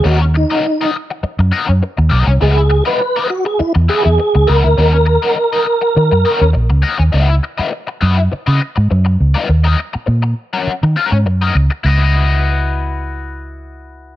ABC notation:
X:1
M:4/4
L:1/16
Q:1/4=102
K:C#dor
V:1 name="Overdriven electric guitar"
[CFAd] z2 [CFAd] z [CFAd] z4 [CFAd] z3 [CFAd] z | [EFBd] z2 [EFBd] z [EFBd] z4 [EFBd] z3 [EFBd] z | [CFAd] z2 [CFAd] z [CFAd] z4 [CFAd] z3 [CFAd] z | [EFBd] z2 [EFBd] z2 [EFBd] z2 [EFBd] z4 z [EFBd] |
z [CFAd] z4 z [CFAf] z2 [CFAf] z2 [CFAd] z2 | [EFBd]16 |]
V:2 name="Tonewheel organ"
F2 D4 z8 z2 | G3 B3 F G E2 G G3 A2- | A12 z4 | z16 |
z16 | z16 |]
V:3 name="Fingered electric bass" clef=bass
D,,3 z6 F,, z F,, z D,, B,,, ^B,,, | C,,3 z6 E,, z E,, z C,, C,, =D,, | D,,3 z4 z D, F,, z D,, A,,, C,, z D,, | C,,2 z4 F,,2 z C, z G,, F,,2 C,, z |
D,,2 z2 A,,2 z3 D, z G,, F,,2 C,, z | C,,16 |]